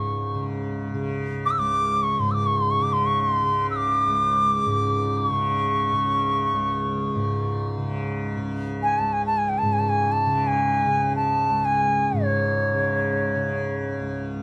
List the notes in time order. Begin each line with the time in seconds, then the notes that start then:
Already playing: C#2 G#2 C#3 C#6
0.35 C#3
0.94 C#3
1.46 D6
1.51 E6
1.58 C#2 D6
2.03 C#6
2.19 G#2 C6
2.31 D6 E6
2.46 C#6
2.58 C6
2.71 C#6
2.80 C#3 D6
2.93 C6
3.06 C#6
3.21 C6
3.42 C#3
3.71 E6
3.76 D6
4.07 C#2
4.66 G#2
5.18 D6
5.30 C#3 C#6
5.93 C#3
6.53 C#2
7.15 G#2
7.78 C#3
8.38 C#3
8.83 G#5
8.99 C#2 A5
9.13 G#5
9.27 A5
9.38 G#5
9.49 G5
9.58 G#2 A5
9.73 G#5
9.79 A5
9.89 G#5
10.12 A5
10.27 C#3
10.47 G#5
10.86 C#3
11.16 A5
11.49 C#2
11.65 G#5
12.13 G#2
12.23 C#5
12.74 C#3
13.35 C#3
14.00 C#2